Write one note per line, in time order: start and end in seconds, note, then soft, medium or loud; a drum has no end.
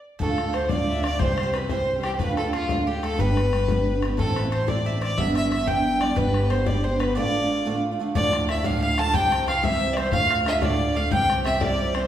0.19 0.29 D2 medium
0.19 1.18 D2 medium
0.19 0.29 A2 medium
0.19 0.29 D3 medium
0.19 0.30 A3 medium
0.19 0.29 D4 medium
0.19 0.28 F4 medium
0.19 0.51 A4 medium
0.19 0.55 A4 medium
0.19 0.56 A4 medium
0.19 bodhran medium
0.29 0.47 D3 soft
0.29 0.46 A3 soft
0.29 0.46 D4 soft
0.29 0.44 F4 medium
0.38 bodhran medium
0.46 0.52 D3 soft
0.46 0.53 A3 soft
0.46 0.54 D4 soft
0.46 0.54 F4 soft
0.53 0.70 D3 medium
0.53 0.70 A3 medium
0.53 0.71 D4 medium
0.53 0.71 F4 medium
0.53 0.68 C5 medium
0.53 0.72 C5 medium
0.53 0.71 C5 medium
0.53 bodhran medium
0.69 0.79 D2 medium
0.69 0.79 A2 medium
0.69 0.80 D3 medium
0.69 0.79 A3 medium
0.69 0.79 D4 medium
0.69 0.77 F4 medium
0.69 1.01 D5 medium
0.69 1.03 D5 medium
0.69 0.88 D5 medium
0.69 bodhran medium
0.79 0.97 D3 soft
0.79 0.96 A3 soft
0.79 0.95 D4 soft
0.79 0.94 F4 soft
0.88 1.05 E5 medium
0.88 bodhran soft
0.95 1.03 D3 soft
0.95 1.04 A3 soft
0.95 1.04 D4 medium
0.95 1.04 F4 soft
1.03 1.20 D3 medium
1.03 1.20 A3 medium
1.03 1.21 D4 medium
1.03 1.18 D5 medium
1.03 1.21 D5 medium
1.03 1.21 D5 loud
1.03 bodhran medium
1.07 1.21 F4 medium
1.19 2.17 C2 medium
1.19 1.29 C3 medium
1.19 1.29 E3 medium
1.19 1.30 G3 medium
1.19 1.30 C4 medium
1.19 1.28 G4 medium
1.19 1.31 C5 medium
1.19 1.38 C5 medium
1.19 1.55 C5 loud
1.19 bodhran medium
1.29 1.47 G3 soft
1.29 1.46 C4 medium
1.29 1.45 G4 medium
1.29 1.42 C5 medium
1.38 1.62 C5 medium
1.38 bodhran medium
1.43 1.54 G4 medium
1.43 1.53 C5 medium
1.48 1.54 G3 soft
1.48 1.55 C4 soft
1.53 1.69 E3 medium
1.53 1.70 G3 medium
1.53 1.70 C4 medium
1.53 1.69 B4 medium
1.53 bodhran medium
1.57 1.71 G4 medium
1.64 1.72 B4 medium
1.69 1.79 C3 medium
1.69 1.79 E3 medium
1.69 1.79 G3 medium
1.69 1.79 C4 medium
1.69 1.78 G4 medium
1.69 2.01 C5 loud
1.69 2.01 C5 medium
1.69 2.06 C5 medium
1.69 bodhran medium
1.79 1.97 G3 soft
1.79 1.96 C4 soft
1.79 1.94 G4 soft
1.87 bodhran soft
1.96 2.04 G3 soft
1.96 2.04 C4 soft
1.96 2.04 G4 medium
2.03 2.19 E3 medium
2.03 2.20 G3 medium
2.03 2.21 C4 medium
2.03 2.18 G4 medium
2.03 2.15 G4 medium
2.03 2.21 G4 medium
2.03 bodhran medium
2.15 3.17 D2 medium
2.15 2.36 B4 medium
2.15 2.48 B4 medium
2.15 2.37 B4 loud
2.15 2.21 C5 medium
2.19 2.29 D2 medium
2.19 2.29 A2 medium
2.19 2.29 D3 medium
2.19 2.29 A3 medium
2.19 2.29 D4 medium
2.19 2.27 F4 medium
2.19 bodhran medium
2.29 2.47 D3 medium
2.29 2.46 A3 medium
2.29 2.45 D4 medium
2.29 2.44 F4 medium
2.37 2.52 A4 medium
2.37 bodhran medium
2.45 2.52 D3 soft
2.45 2.53 A3 soft
2.45 2.54 D4 medium
2.45 2.53 F4 medium
2.45 2.55 G4 medium
2.53 2.69 D3 medium
2.53 2.70 A3 medium
2.53 2.70 D4 medium
2.53 2.85 F4 medium
2.53 2.88 F4 medium
2.53 2.85 F4 medium
2.53 2.70 F4 medium
2.53 bodhran medium
2.69 2.78 D2 medium
2.69 2.79 A2 medium
2.69 2.79 D3 medium
2.69 2.79 A3 medium
2.69 2.78 D4 medium
2.69 2.77 F4 medium
2.69 bodhran medium
2.78 2.97 D3 soft
2.78 2.96 A3 soft
2.78 2.95 D4 soft
2.78 2.93 F4 medium
2.87 3.02 G4 medium
2.87 3.05 G4 medium
2.87 bodhran soft
2.95 3.02 D3 soft
2.95 3.02 A3 soft
2.95 3.04 D4 soft
2.95 3.03 F4 medium
3.02 3.19 D3 medium
3.02 3.19 A3 medium
3.02 3.20 D4 medium
3.02 3.20 F4 medium
3.02 3.19 A4 medium
3.02 3.21 A4 loud
3.02 3.18 A4 medium
3.02 bodhran medium
3.18 4.16 G1 medium
3.18 3.28 G3 medium
3.18 3.29 B3 medium
3.18 3.29 D4 medium
3.18 3.27 G4 medium
3.18 4.02 B4 medium
3.18 4.03 B4 loud
3.18 3.99 B4 medium
3.18 bodhran medium
3.28 3.46 B3 medium
3.28 3.45 D4 medium
3.28 3.43 G4 medium
3.37 bodhran medium
3.44 3.53 B3 soft
3.44 3.54 D4 soft
3.44 3.53 G4 soft
3.52 3.68 G3 medium
3.52 3.68 B3 medium
3.52 3.69 D4 medium
3.52 3.70 G4 medium
3.52 bodhran medium
3.68 3.78 G3 medium
3.68 3.78 B3 medium
3.68 3.78 D4 medium
3.68 3.76 G4 medium
3.68 bodhran medium
3.77 3.96 B3 soft
3.77 3.94 D4 medium
3.77 3.93 G4 medium
3.87 bodhran soft
3.94 4.02 B3 soft
3.94 4.03 D4 medium
3.94 4.02 G4 medium
4.02 4.18 G3 medium
4.02 4.18 B3 medium
4.02 4.19 D4 medium
4.02 4.19 G4 medium
4.02 bodhran medium
4.12 4.21 B4 medium
4.17 5.16 A1 medium
4.17 4.27 A2 medium
4.17 4.27 E3 medium
4.17 4.26 A3 medium
4.17 4.28 C4 medium
4.17 4.25 E4 medium
4.17 4.50 A4 loud
4.17 4.36 A4 medium
4.17 4.54 A4 medium
4.17 bodhran medium
4.26 4.44 A3 medium
4.26 4.45 C4 medium
4.26 4.42 E4 medium
4.36 4.51 B4 medium
4.36 bodhran medium
4.43 4.52 A3 soft
4.43 4.51 C4 soft
4.43 4.52 E4 medium
4.51 4.67 E3 medium
4.51 4.68 A3 medium
4.51 4.67 C4 medium
4.51 4.68 E4 medium
4.51 4.71 C5 medium
4.51 4.68 C5 medium
4.51 4.70 C5 medium
4.51 bodhran medium
4.67 4.77 A2 medium
4.67 4.77 E3 medium
4.67 4.76 A3 medium
4.67 4.77 C4 medium
4.67 4.74 E4 medium
4.67 4.85 D5 medium
4.67 5.02 D5 medium
4.67 bodhran medium
4.76 4.93 A3 soft
4.76 4.95 C4 soft
4.76 4.92 E4 medium
4.86 5.01 E5 medium
4.86 bodhran soft
4.93 5.02 A3 soft
4.93 5.01 C4 soft
4.93 5.01 E4 soft
5.01 5.17 E3 medium
5.01 5.19 A3 medium
5.01 5.18 C4 medium
5.01 5.19 E4 medium
5.01 5.16 D5 medium
5.01 5.19 D5 loud
5.01 5.19 D5 medium
5.01 bodhran medium
5.17 6.15 G1 medium
5.17 5.27 G2 medium
5.17 5.27 D3 medium
5.17 5.27 E3 medium
5.17 5.27 G3 medium
5.17 5.26 B3 medium
5.17 5.25 D4 medium
5.17 5.36 E5 medium
5.17 5.34 E5 medium
5.17 5.36 E5 loud
5.17 bodhran medium
5.26 5.44 E3 soft
5.26 5.44 G3 soft
5.26 5.43 B3 medium
5.26 5.41 D4 medium
5.35 5.50 E5 medium
5.35 5.51 E5 medium
5.35 bodhran medium
5.43 5.50 E3 soft
5.43 5.51 G3 soft
5.43 5.52 B3 soft
5.43 5.51 D4 soft
5.51 5.67 E3 medium
5.51 5.67 G3 medium
5.51 5.67 B3 medium
5.51 5.68 D4 medium
5.51 5.66 E5 medium
5.51 5.69 E5 loud
5.51 5.68 E5 medium
5.51 bodhran medium
5.67 5.76 G2 medium
5.67 5.76 D3 medium
5.67 5.77 E3 medium
5.67 5.76 G3 medium
5.67 5.75 B3 medium
5.67 5.74 D4 medium
5.67 6.03 G5 medium
5.67 6.02 G5 medium
5.67 6.02 G5 loud
5.67 bodhran medium
5.76 5.94 E3 soft
5.76 5.94 G3 soft
5.76 5.93 B3 soft
5.76 5.91 D4 soft
5.92 5.99 E3 soft
5.92 6.00 G3 soft
5.92 6.01 B3 soft
5.92 6.01 D4 medium
6.00 6.16 E3 medium
6.00 6.15 G3 medium
6.00 6.16 B3 medium
6.00 6.16 D4 medium
6.00 6.16 D5 medium
6.00 6.18 D5 medium
6.00 6.16 D5 medium
6.00 bodhran medium
6.16 7.14 G1 medium
6.16 6.26 G3 medium
6.16 6.26 B3 medium
6.16 6.26 D4 medium
6.16 6.24 G4 medium
6.16 6.48 B4 medium
6.16 6.52 B4 loud
6.16 bodhran medium
6.25 6.44 B3 medium
6.25 6.43 D4 medium
6.25 6.41 G4 medium
6.34 bodhran medium
6.42 6.50 B3 soft
6.42 6.51 D4 soft
6.42 6.50 G4 medium
6.46 6.65 G3 medium
6.46 6.65 C5 medium
6.46 6.52 D5 medium
6.50 6.65 B3 medium
6.50 6.66 D4 medium
6.50 6.67 G4 medium
6.50 6.68 C5 medium
6.50 bodhran medium
6.66 6.75 G3 medium
6.66 6.76 B3 medium
6.66 6.75 D4 medium
6.66 6.74 G4 medium
6.66 6.83 D5 medium
6.66 6.85 D5 medium
6.66 6.86 D5 medium
6.66 bodhran medium
6.75 6.93 B3 soft
6.75 6.92 D4 medium
6.75 6.91 G4 medium
6.84 7.02 C5 loud
6.84 6.99 C5 medium
6.84 7.00 C5 medium
6.84 bodhran soft
6.92 7.00 B3 soft
6.92 7.01 D4 soft
6.92 7.00 G4 soft
7.00 7.16 G3 medium
7.00 7.16 B3 medium
7.00 7.16 D4 medium
7.00 7.17 G4 medium
7.00 7.15 B4 medium
7.00 7.16 B4 medium
7.00 7.18 B4 medium
7.00 bodhran medium
7.15 7.25 D2 medium
7.15 7.25 A2 medium
7.15 7.25 D3 medium
7.15 7.26 A3 medium
7.15 7.25 D4 medium
7.15 7.23 F4 loud
7.15 7.79 D5 medium
7.15 7.84 D5 medium
7.15 7.80 D5 loud
7.24 7.43 D3 soft
7.24 7.42 A3 soft
7.24 7.41 D4 medium
7.24 7.40 F4 medium
7.41 7.48 D3 soft
7.41 7.49 A3 soft
7.41 7.50 D4 soft
7.41 7.49 F4 medium
7.49 7.65 D3 medium
7.49 7.65 A3 medium
7.49 7.65 D4 medium
7.49 7.66 F4 medium
7.65 7.74 D2 medium
7.65 7.75 A2 medium
7.65 7.75 D3 medium
7.65 7.75 A3 medium
7.65 7.74 D4 medium
7.65 7.73 F4 medium
7.74 7.93 D3 soft
7.74 7.92 A3 soft
7.74 7.91 D4 soft
7.74 7.90 F4 medium
7.91 7.98 D3 soft
7.91 7.99 A3 soft
7.91 8.00 D4 medium
7.91 7.99 F4 medium
7.99 8.15 D3 medium
7.99 8.15 A3 medium
7.99 8.16 D4 medium
7.99 8.17 F4 medium
8.15 8.49 D2 medium
8.15 9.12 D2 medium
8.15 8.49 A2 medium
8.15 8.47 F3 medium
8.15 8.48 A3 medium
8.15 8.49 D4 loud
8.15 8.50 E4 loud
8.15 8.51 D5 medium
8.15 8.50 D5 loud
8.15 8.47 D5 loud
8.15 bodhran medium
8.33 bodhran medium
8.48 8.64 F3 medium
8.48 8.65 A3 medium
8.48 8.65 D4 medium
8.48 8.65 E4 medium
8.48 8.63 E5 medium
8.48 8.67 E5 medium
8.48 bodhran medium
8.64 8.98 D2 medium
8.64 8.98 A2 medium
8.64 8.96 F3 medium
8.64 8.98 A3 loud
8.64 8.99 D4 medium
8.64 8.99 E4 medium
8.64 8.81 F5 medium
8.64 8.82 F5 loud
8.64 8.83 F5 medium
8.64 bodhran medium
8.82 9.01 F5 loud
8.82 8.97 F5 loud
8.82 9.00 F5 loud
8.82 bodhran soft
8.98 9.14 F3 medium
8.98 9.14 A3 medium
8.98 9.15 D4 medium
8.98 9.15 E4 medium
8.98 9.16 A5 loud
8.98 9.13 A5 medium
8.98 9.16 A5 loud
8.98 bodhran medium
9.13 10.11 C2 medium
9.13 9.47 C3 medium
9.13 9.46 E3 loud
9.13 9.47 G3 medium
9.13 9.48 C4 loud
9.13 9.49 G4 loud
9.13 9.30 G5 loud
9.13 9.48 G5 loud
9.13 9.47 G5 medium
9.13 bodhran medium
9.32 9.46 G5 loud
9.32 bodhran medium
9.47 9.62 E3 medium
9.47 9.63 G3 medium
9.47 9.63 C4 medium
9.47 9.64 G4 medium
9.47 9.62 F5 medium
9.47 9.66 F5 loud
9.47 9.65 F5 medium
9.47 bodhran medium
9.63 9.97 C3 medium
9.63 9.95 E3 medium
9.63 9.96 G3 medium
9.63 9.97 C4 loud
9.63 9.98 G4 medium
9.63 9.94 E5 loud
9.63 9.95 E5 medium
9.63 9.98 E5 medium
9.63 bodhran medium
9.81 bodhran soft
9.93 10.12 E3 medium
9.93 10.14 C5 medium
9.93 10.12 C5 loud
9.93 9.98 D5 medium
9.93 bodhran medium
9.97 10.13 G3 medium
9.97 10.13 C4 medium
9.97 10.14 G4 medium
9.97 10.13 C5 medium
10.12 11.09 D2 medium
10.12 10.46 D2 medium
10.12 10.46 A2 medium
10.12 10.44 D3 medium
10.12 10.45 A3 medium
10.12 10.46 D4 medium
10.12 10.47 F4 medium
10.12 10.44 F5 loud
10.12 10.49 F5 medium
10.12 10.29 F5 medium
10.12 bodhran medium
10.30 10.45 F5 loud
10.30 bodhran medium
10.45 10.61 D3 medium
10.45 10.62 A3 medium
10.45 10.62 D4 medium
10.45 10.62 F4 medium
10.45 10.61 E5 medium
10.45 10.65 E5 medium
10.45 10.61 E5 medium
10.45 bodhran medium
10.61 10.95 D2 medium
10.61 10.96 A2 medium
10.61 10.94 D3 loud
10.61 10.95 A3 medium
10.61 10.96 D4 medium
10.61 10.96 F4 medium
10.61 10.98 D5 loud
10.61 10.94 D5 medium
10.61 10.95 D5 medium
10.61 bodhran loud
10.80 bodhran soft
10.95 11.11 D3 medium
10.95 11.12 A3 medium
10.95 11.12 D4 medium
10.95 11.12 F4 medium
10.95 11.14 F5 medium
10.95 11.11 F5 loud
10.95 11.11 F5 medium
11.11 12.07 C2 medium
11.11 11.45 C3 loud
11.11 11.43 E3 medium
11.11 11.45 G3 medium
11.11 11.46 C4 medium
11.11 11.46 G4 medium
11.11 11.43 G5 loud
11.11 11.47 G5 medium
11.11 bodhran loud
11.30 bodhran medium
11.44 11.60 E3 medium
11.44 11.61 G3 medium
11.44 11.62 C4 medium
11.44 11.62 G4 medium
11.44 11.59 E5 medium
11.44 11.63 E5 medium
11.44 bodhran medium
11.61 11.94 C3 medium
11.61 11.93 E3 medium
11.61 11.94 G3 medium
11.61 11.95 C4 loud
11.61 11.96 G4 medium
11.61 11.96 D5 loud
11.61 11.94 D5 medium
11.61 11.90 D5 medium
11.61 bodhran loud
11.79 bodhran soft
11.91 12.07 E3 medium
11.91 12.07 C5 loud
11.91 12.07 C5 medium
11.91 11.97 D5 medium
11.91 bodhran medium
11.95 12.07 G3 medium
11.95 12.07 C4 medium
11.95 12.07 G4 medium
11.95 12.07 C5 medium